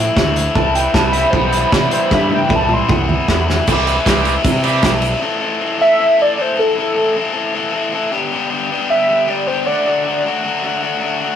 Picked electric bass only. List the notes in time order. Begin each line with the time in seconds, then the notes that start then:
0.16 D2
0.56 C2
0.94 C2
1.33 B1
1.72 C3
2.11 G2
2.50 C2
2.90 C2
3.29 E2
3.68 C2
4.06 C2
4.44 C3
4.83 B1